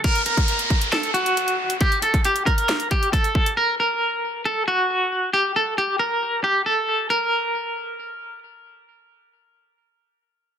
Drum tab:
HH |xxxxxxxxxxxxxx-x|xxxxxxxxxxxxxx-x|----------------|----------------|
CP |--------x-------|--------x-------|----------------|----------------|
SD |--------o-------|--------o-------|----------------|----------------|
BD |o--o--o---------|o--o--o---o-o-o-|----------------|----------------|

HH |----------------|----------------|
CP |----------------|----------------|
SD |----------------|----------------|
BD |----------------|----------------|